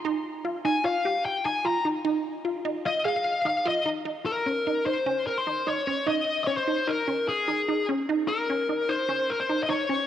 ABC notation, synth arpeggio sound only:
X:1
M:5/4
L:1/8
Q:1/4=149
K:Dblyd
V:1 name="Synth arpeggio sound"
E2 F E F G2 E F E | E2 F E F A2 E F E | E2 D E E D2 E E D | E2 D E E D2 E E D |
E2 D E E D2 E E D |]